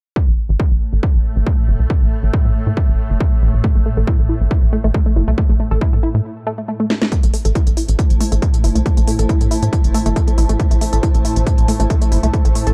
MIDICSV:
0, 0, Header, 1, 6, 480
1, 0, Start_track
1, 0, Key_signature, 0, "minor"
1, 0, Tempo, 434783
1, 179, Time_signature, 4, 2, 24, 8
1, 14061, End_track
2, 0, Start_track
2, 0, Title_t, "Ambient pad"
2, 0, Program_c, 0, 92
2, 7860, Note_on_c, 0, 64, 86
2, 8071, Note_on_c, 0, 81, 77
2, 8186, Note_on_c, 0, 72, 86
2, 14061, Note_off_c, 0, 64, 0
2, 14061, Note_off_c, 0, 72, 0
2, 14061, Note_off_c, 0, 81, 0
2, 14061, End_track
3, 0, Start_track
3, 0, Title_t, "Synth arpeggio sound"
3, 0, Program_c, 1, 84
3, 4018, Note_on_c, 1, 57, 81
3, 4058, Note_off_c, 1, 57, 0
3, 4144, Note_on_c, 1, 57, 73
3, 4180, Note_off_c, 1, 57, 0
3, 4259, Note_on_c, 1, 57, 76
3, 4298, Note_off_c, 1, 57, 0
3, 4385, Note_on_c, 1, 69, 75
3, 4473, Note_off_c, 1, 69, 0
3, 4499, Note_on_c, 1, 64, 82
3, 4597, Note_off_c, 1, 64, 0
3, 4738, Note_on_c, 1, 64, 72
3, 4804, Note_off_c, 1, 64, 0
3, 5218, Note_on_c, 1, 57, 103
3, 5258, Note_off_c, 1, 57, 0
3, 5346, Note_on_c, 1, 57, 97
3, 5380, Note_off_c, 1, 57, 0
3, 5459, Note_on_c, 1, 57, 82
3, 5524, Note_off_c, 1, 57, 0
3, 5586, Note_on_c, 1, 57, 74
3, 5644, Note_off_c, 1, 57, 0
3, 5699, Note_on_c, 1, 64, 69
3, 5764, Note_off_c, 1, 64, 0
3, 5826, Note_on_c, 1, 57, 101
3, 5861, Note_off_c, 1, 57, 0
3, 5939, Note_on_c, 1, 57, 81
3, 5978, Note_off_c, 1, 57, 0
3, 6066, Note_on_c, 1, 57, 72
3, 6100, Note_off_c, 1, 57, 0
3, 6179, Note_on_c, 1, 57, 73
3, 6218, Note_off_c, 1, 57, 0
3, 6306, Note_on_c, 1, 69, 76
3, 6394, Note_off_c, 1, 69, 0
3, 6419, Note_on_c, 1, 64, 78
3, 6517, Note_off_c, 1, 64, 0
3, 6659, Note_on_c, 1, 64, 73
3, 6724, Note_off_c, 1, 64, 0
3, 7139, Note_on_c, 1, 57, 104
3, 7204, Note_off_c, 1, 57, 0
3, 7265, Note_on_c, 1, 57, 77
3, 7300, Note_off_c, 1, 57, 0
3, 7378, Note_on_c, 1, 57, 79
3, 7418, Note_off_c, 1, 57, 0
3, 7505, Note_on_c, 1, 57, 95
3, 7564, Note_off_c, 1, 57, 0
3, 7619, Note_on_c, 1, 57, 71
3, 7658, Note_off_c, 1, 57, 0
3, 7745, Note_on_c, 1, 57, 99
3, 7780, Note_off_c, 1, 57, 0
3, 7859, Note_on_c, 1, 57, 80
3, 7898, Note_off_c, 1, 57, 0
3, 7986, Note_on_c, 1, 57, 75
3, 8020, Note_off_c, 1, 57, 0
3, 8099, Note_on_c, 1, 57, 78
3, 8138, Note_off_c, 1, 57, 0
3, 8225, Note_on_c, 1, 69, 76
3, 8313, Note_off_c, 1, 69, 0
3, 8339, Note_on_c, 1, 64, 80
3, 8437, Note_off_c, 1, 64, 0
3, 8579, Note_on_c, 1, 64, 76
3, 8644, Note_off_c, 1, 64, 0
3, 9059, Note_on_c, 1, 57, 108
3, 9098, Note_off_c, 1, 57, 0
3, 9185, Note_on_c, 1, 57, 97
3, 9220, Note_off_c, 1, 57, 0
3, 9298, Note_on_c, 1, 57, 81
3, 9364, Note_off_c, 1, 57, 0
3, 9425, Note_on_c, 1, 57, 74
3, 9484, Note_off_c, 1, 57, 0
3, 9538, Note_on_c, 1, 64, 75
3, 9603, Note_off_c, 1, 64, 0
3, 9664, Note_on_c, 1, 57, 100
3, 9700, Note_off_c, 1, 57, 0
3, 9777, Note_on_c, 1, 57, 82
3, 9817, Note_off_c, 1, 57, 0
3, 9904, Note_on_c, 1, 57, 73
3, 9940, Note_off_c, 1, 57, 0
3, 10018, Note_on_c, 1, 57, 76
3, 10058, Note_off_c, 1, 57, 0
3, 10145, Note_on_c, 1, 69, 76
3, 10233, Note_off_c, 1, 69, 0
3, 10259, Note_on_c, 1, 64, 84
3, 10357, Note_off_c, 1, 64, 0
3, 10498, Note_on_c, 1, 64, 74
3, 10564, Note_off_c, 1, 64, 0
3, 10978, Note_on_c, 1, 57, 105
3, 11018, Note_off_c, 1, 57, 0
3, 11104, Note_on_c, 1, 57, 103
3, 11140, Note_off_c, 1, 57, 0
3, 11217, Note_on_c, 1, 57, 84
3, 11283, Note_off_c, 1, 57, 0
3, 11344, Note_on_c, 1, 57, 74
3, 11403, Note_off_c, 1, 57, 0
3, 11458, Note_on_c, 1, 64, 74
3, 11523, Note_off_c, 1, 64, 0
3, 11584, Note_on_c, 1, 57, 102
3, 11620, Note_off_c, 1, 57, 0
3, 11698, Note_on_c, 1, 57, 80
3, 11738, Note_off_c, 1, 57, 0
3, 11825, Note_on_c, 1, 57, 75
3, 11860, Note_off_c, 1, 57, 0
3, 11939, Note_on_c, 1, 57, 76
3, 11978, Note_off_c, 1, 57, 0
3, 12065, Note_on_c, 1, 69, 79
3, 12153, Note_off_c, 1, 69, 0
3, 12178, Note_on_c, 1, 64, 78
3, 12276, Note_off_c, 1, 64, 0
3, 12419, Note_on_c, 1, 64, 72
3, 12484, Note_off_c, 1, 64, 0
3, 12898, Note_on_c, 1, 57, 106
3, 12938, Note_off_c, 1, 57, 0
3, 13025, Note_on_c, 1, 57, 97
3, 13060, Note_off_c, 1, 57, 0
3, 13139, Note_on_c, 1, 57, 83
3, 13204, Note_off_c, 1, 57, 0
3, 13266, Note_on_c, 1, 57, 74
3, 13324, Note_off_c, 1, 57, 0
3, 13379, Note_on_c, 1, 64, 75
3, 13444, Note_off_c, 1, 64, 0
3, 13505, Note_on_c, 1, 57, 102
3, 13540, Note_off_c, 1, 57, 0
3, 13619, Note_on_c, 1, 57, 81
3, 13658, Note_off_c, 1, 57, 0
3, 13746, Note_on_c, 1, 57, 75
3, 13780, Note_off_c, 1, 57, 0
3, 13859, Note_on_c, 1, 57, 73
3, 13898, Note_off_c, 1, 57, 0
3, 13986, Note_on_c, 1, 69, 77
3, 14061, Note_off_c, 1, 69, 0
3, 14061, End_track
4, 0, Start_track
4, 0, Title_t, "Synth drone"
4, 0, Program_c, 2, 95
4, 179, Note_on_c, 2, 57, 74
4, 180, Note_on_c, 2, 45, 77
4, 6899, Note_off_c, 2, 45, 0
4, 6899, Note_off_c, 2, 57, 0
4, 7859, Note_on_c, 2, 45, 73
4, 7859, Note_on_c, 2, 57, 79
4, 14061, Note_off_c, 2, 45, 0
4, 14061, Note_off_c, 2, 57, 0
4, 14061, End_track
5, 0, Start_track
5, 0, Title_t, "Analog synth bass"
5, 0, Program_c, 3, 38
5, 304, Note_on_c, 3, 33, 74
5, 378, Note_off_c, 3, 33, 0
5, 544, Note_on_c, 3, 33, 83
5, 618, Note_off_c, 3, 33, 0
5, 783, Note_on_c, 3, 33, 78
5, 858, Note_off_c, 3, 33, 0
5, 1023, Note_on_c, 3, 33, 82
5, 1098, Note_off_c, 3, 33, 0
5, 1264, Note_on_c, 3, 33, 73
5, 1338, Note_off_c, 3, 33, 0
5, 1504, Note_on_c, 3, 33, 81
5, 1578, Note_off_c, 3, 33, 0
5, 1857, Note_on_c, 3, 31, 94
5, 1940, Note_off_c, 3, 31, 0
5, 1983, Note_on_c, 3, 36, 78
5, 2058, Note_off_c, 3, 36, 0
5, 2223, Note_on_c, 3, 33, 74
5, 2298, Note_off_c, 3, 33, 0
5, 2464, Note_on_c, 3, 33, 79
5, 2538, Note_off_c, 3, 33, 0
5, 2704, Note_on_c, 3, 45, 72
5, 2778, Note_off_c, 3, 45, 0
5, 2944, Note_on_c, 3, 45, 80
5, 3018, Note_off_c, 3, 45, 0
5, 3185, Note_on_c, 3, 31, 74
5, 3258, Note_off_c, 3, 31, 0
5, 3425, Note_on_c, 3, 31, 76
5, 3498, Note_off_c, 3, 31, 0
5, 3778, Note_on_c, 3, 33, 92
5, 3860, Note_off_c, 3, 33, 0
5, 3905, Note_on_c, 3, 33, 74
5, 3979, Note_off_c, 3, 33, 0
5, 4145, Note_on_c, 3, 33, 73
5, 4218, Note_off_c, 3, 33, 0
5, 4385, Note_on_c, 3, 33, 84
5, 4458, Note_off_c, 3, 33, 0
5, 4625, Note_on_c, 3, 33, 75
5, 4699, Note_off_c, 3, 33, 0
5, 4865, Note_on_c, 3, 33, 82
5, 4939, Note_off_c, 3, 33, 0
5, 5105, Note_on_c, 3, 33, 77
5, 5179, Note_off_c, 3, 33, 0
5, 5345, Note_on_c, 3, 33, 80
5, 5419, Note_off_c, 3, 33, 0
5, 5698, Note_on_c, 3, 31, 94
5, 5781, Note_off_c, 3, 31, 0
5, 5825, Note_on_c, 3, 36, 76
5, 5899, Note_off_c, 3, 36, 0
5, 6065, Note_on_c, 3, 33, 73
5, 6139, Note_off_c, 3, 33, 0
5, 6305, Note_on_c, 3, 33, 84
5, 6379, Note_off_c, 3, 33, 0
5, 6544, Note_on_c, 3, 45, 76
5, 6618, Note_off_c, 3, 45, 0
5, 6784, Note_on_c, 3, 45, 78
5, 6858, Note_off_c, 3, 45, 0
5, 7985, Note_on_c, 3, 33, 73
5, 8059, Note_off_c, 3, 33, 0
5, 8225, Note_on_c, 3, 33, 82
5, 8298, Note_off_c, 3, 33, 0
5, 8465, Note_on_c, 3, 33, 76
5, 8539, Note_off_c, 3, 33, 0
5, 8705, Note_on_c, 3, 33, 82
5, 8779, Note_off_c, 3, 33, 0
5, 8946, Note_on_c, 3, 33, 75
5, 9019, Note_off_c, 3, 33, 0
5, 9185, Note_on_c, 3, 33, 81
5, 9259, Note_off_c, 3, 33, 0
5, 9539, Note_on_c, 3, 31, 93
5, 9621, Note_off_c, 3, 31, 0
5, 9666, Note_on_c, 3, 36, 78
5, 9739, Note_off_c, 3, 36, 0
5, 9905, Note_on_c, 3, 33, 77
5, 9979, Note_off_c, 3, 33, 0
5, 10145, Note_on_c, 3, 33, 78
5, 10219, Note_off_c, 3, 33, 0
5, 10385, Note_on_c, 3, 45, 73
5, 10459, Note_off_c, 3, 45, 0
5, 10625, Note_on_c, 3, 45, 80
5, 10699, Note_off_c, 3, 45, 0
5, 10865, Note_on_c, 3, 31, 75
5, 10939, Note_off_c, 3, 31, 0
5, 11105, Note_on_c, 3, 31, 81
5, 11179, Note_off_c, 3, 31, 0
5, 11458, Note_on_c, 3, 33, 92
5, 11541, Note_off_c, 3, 33, 0
5, 11585, Note_on_c, 3, 33, 76
5, 11658, Note_off_c, 3, 33, 0
5, 11825, Note_on_c, 3, 33, 74
5, 11899, Note_off_c, 3, 33, 0
5, 12065, Note_on_c, 3, 33, 81
5, 12139, Note_off_c, 3, 33, 0
5, 12305, Note_on_c, 3, 33, 77
5, 12378, Note_off_c, 3, 33, 0
5, 12546, Note_on_c, 3, 33, 80
5, 12619, Note_off_c, 3, 33, 0
5, 12785, Note_on_c, 3, 33, 77
5, 12859, Note_off_c, 3, 33, 0
5, 13025, Note_on_c, 3, 33, 80
5, 13099, Note_off_c, 3, 33, 0
5, 13378, Note_on_c, 3, 31, 92
5, 13460, Note_off_c, 3, 31, 0
5, 13505, Note_on_c, 3, 36, 76
5, 13579, Note_off_c, 3, 36, 0
5, 13744, Note_on_c, 3, 33, 77
5, 13818, Note_off_c, 3, 33, 0
5, 13985, Note_on_c, 3, 33, 86
5, 14059, Note_off_c, 3, 33, 0
5, 14061, End_track
6, 0, Start_track
6, 0, Title_t, "Drums"
6, 178, Note_on_c, 9, 36, 114
6, 288, Note_off_c, 9, 36, 0
6, 658, Note_on_c, 9, 36, 117
6, 768, Note_off_c, 9, 36, 0
6, 1138, Note_on_c, 9, 36, 117
6, 1248, Note_off_c, 9, 36, 0
6, 1618, Note_on_c, 9, 36, 112
6, 1728, Note_off_c, 9, 36, 0
6, 2098, Note_on_c, 9, 36, 121
6, 2208, Note_off_c, 9, 36, 0
6, 2578, Note_on_c, 9, 36, 123
6, 2688, Note_off_c, 9, 36, 0
6, 3058, Note_on_c, 9, 36, 121
6, 3168, Note_off_c, 9, 36, 0
6, 3538, Note_on_c, 9, 36, 118
6, 3648, Note_off_c, 9, 36, 0
6, 4018, Note_on_c, 9, 36, 120
6, 4128, Note_off_c, 9, 36, 0
6, 4498, Note_on_c, 9, 36, 121
6, 4608, Note_off_c, 9, 36, 0
6, 4978, Note_on_c, 9, 36, 127
6, 5088, Note_off_c, 9, 36, 0
6, 5458, Note_on_c, 9, 36, 122
6, 5569, Note_off_c, 9, 36, 0
6, 5938, Note_on_c, 9, 36, 117
6, 6048, Note_off_c, 9, 36, 0
6, 6418, Note_on_c, 9, 36, 121
6, 6528, Note_off_c, 9, 36, 0
6, 7619, Note_on_c, 9, 38, 59
6, 7729, Note_off_c, 9, 38, 0
6, 7746, Note_on_c, 9, 38, 69
6, 7856, Note_off_c, 9, 38, 0
6, 7858, Note_on_c, 9, 36, 112
6, 7859, Note_on_c, 9, 42, 67
6, 7969, Note_off_c, 9, 36, 0
6, 7969, Note_off_c, 9, 42, 0
6, 7985, Note_on_c, 9, 42, 68
6, 8096, Note_off_c, 9, 42, 0
6, 8099, Note_on_c, 9, 46, 105
6, 8209, Note_off_c, 9, 46, 0
6, 8225, Note_on_c, 9, 42, 67
6, 8335, Note_off_c, 9, 42, 0
6, 8338, Note_on_c, 9, 36, 111
6, 8339, Note_on_c, 9, 42, 67
6, 8449, Note_off_c, 9, 36, 0
6, 8449, Note_off_c, 9, 42, 0
6, 8465, Note_on_c, 9, 42, 68
6, 8576, Note_off_c, 9, 42, 0
6, 8578, Note_on_c, 9, 46, 111
6, 8689, Note_off_c, 9, 46, 0
6, 8705, Note_on_c, 9, 42, 65
6, 8815, Note_off_c, 9, 42, 0
6, 8818, Note_on_c, 9, 36, 125
6, 8819, Note_on_c, 9, 42, 68
6, 8929, Note_off_c, 9, 36, 0
6, 8929, Note_off_c, 9, 42, 0
6, 8945, Note_on_c, 9, 42, 66
6, 9056, Note_off_c, 9, 42, 0
6, 9059, Note_on_c, 9, 46, 109
6, 9169, Note_off_c, 9, 46, 0
6, 9185, Note_on_c, 9, 42, 67
6, 9295, Note_off_c, 9, 42, 0
6, 9298, Note_on_c, 9, 36, 117
6, 9299, Note_on_c, 9, 42, 67
6, 9409, Note_off_c, 9, 36, 0
6, 9409, Note_off_c, 9, 42, 0
6, 9425, Note_on_c, 9, 42, 68
6, 9536, Note_off_c, 9, 42, 0
6, 9539, Note_on_c, 9, 46, 102
6, 9649, Note_off_c, 9, 46, 0
6, 9665, Note_on_c, 9, 42, 64
6, 9776, Note_off_c, 9, 42, 0
6, 9778, Note_on_c, 9, 36, 122
6, 9779, Note_on_c, 9, 42, 68
6, 9889, Note_off_c, 9, 36, 0
6, 9889, Note_off_c, 9, 42, 0
6, 9905, Note_on_c, 9, 42, 71
6, 10016, Note_off_c, 9, 42, 0
6, 10019, Note_on_c, 9, 46, 109
6, 10129, Note_off_c, 9, 46, 0
6, 10145, Note_on_c, 9, 42, 69
6, 10256, Note_off_c, 9, 42, 0
6, 10258, Note_on_c, 9, 36, 123
6, 10259, Note_on_c, 9, 42, 64
6, 10369, Note_off_c, 9, 36, 0
6, 10369, Note_off_c, 9, 42, 0
6, 10386, Note_on_c, 9, 42, 66
6, 10496, Note_off_c, 9, 42, 0
6, 10499, Note_on_c, 9, 46, 111
6, 10610, Note_off_c, 9, 46, 0
6, 10626, Note_on_c, 9, 42, 67
6, 10737, Note_off_c, 9, 42, 0
6, 10738, Note_on_c, 9, 36, 126
6, 10739, Note_on_c, 9, 42, 70
6, 10848, Note_off_c, 9, 36, 0
6, 10850, Note_off_c, 9, 42, 0
6, 10866, Note_on_c, 9, 42, 67
6, 10976, Note_off_c, 9, 42, 0
6, 10979, Note_on_c, 9, 46, 113
6, 11089, Note_off_c, 9, 46, 0
6, 11105, Note_on_c, 9, 42, 69
6, 11215, Note_off_c, 9, 42, 0
6, 11218, Note_on_c, 9, 36, 119
6, 11218, Note_on_c, 9, 42, 70
6, 11328, Note_off_c, 9, 36, 0
6, 11329, Note_off_c, 9, 42, 0
6, 11345, Note_on_c, 9, 42, 72
6, 11455, Note_off_c, 9, 42, 0
6, 11458, Note_on_c, 9, 46, 106
6, 11569, Note_off_c, 9, 46, 0
6, 11584, Note_on_c, 9, 42, 66
6, 11695, Note_off_c, 9, 42, 0
6, 11698, Note_on_c, 9, 36, 122
6, 11699, Note_on_c, 9, 42, 67
6, 11808, Note_off_c, 9, 36, 0
6, 11809, Note_off_c, 9, 42, 0
6, 11825, Note_on_c, 9, 42, 69
6, 11935, Note_off_c, 9, 42, 0
6, 11938, Note_on_c, 9, 46, 113
6, 12048, Note_off_c, 9, 46, 0
6, 12065, Note_on_c, 9, 42, 67
6, 12175, Note_off_c, 9, 42, 0
6, 12178, Note_on_c, 9, 36, 125
6, 12178, Note_on_c, 9, 42, 65
6, 12288, Note_off_c, 9, 36, 0
6, 12288, Note_off_c, 9, 42, 0
6, 12305, Note_on_c, 9, 42, 67
6, 12415, Note_off_c, 9, 42, 0
6, 12418, Note_on_c, 9, 46, 112
6, 12528, Note_off_c, 9, 46, 0
6, 12545, Note_on_c, 9, 42, 65
6, 12655, Note_off_c, 9, 42, 0
6, 12658, Note_on_c, 9, 36, 127
6, 12659, Note_on_c, 9, 42, 68
6, 12769, Note_off_c, 9, 36, 0
6, 12769, Note_off_c, 9, 42, 0
6, 12786, Note_on_c, 9, 42, 67
6, 12896, Note_off_c, 9, 42, 0
6, 12899, Note_on_c, 9, 46, 112
6, 13009, Note_off_c, 9, 46, 0
6, 13025, Note_on_c, 9, 42, 67
6, 13135, Note_off_c, 9, 42, 0
6, 13138, Note_on_c, 9, 36, 124
6, 13139, Note_on_c, 9, 42, 65
6, 13248, Note_off_c, 9, 36, 0
6, 13249, Note_off_c, 9, 42, 0
6, 13265, Note_on_c, 9, 42, 70
6, 13375, Note_off_c, 9, 42, 0
6, 13379, Note_on_c, 9, 46, 110
6, 13489, Note_off_c, 9, 46, 0
6, 13505, Note_on_c, 9, 42, 66
6, 13616, Note_off_c, 9, 42, 0
6, 13618, Note_on_c, 9, 36, 120
6, 13619, Note_on_c, 9, 42, 65
6, 13728, Note_off_c, 9, 36, 0
6, 13729, Note_off_c, 9, 42, 0
6, 13746, Note_on_c, 9, 42, 65
6, 13856, Note_off_c, 9, 42, 0
6, 13859, Note_on_c, 9, 46, 111
6, 13969, Note_off_c, 9, 46, 0
6, 13985, Note_on_c, 9, 42, 64
6, 14061, Note_off_c, 9, 42, 0
6, 14061, End_track
0, 0, End_of_file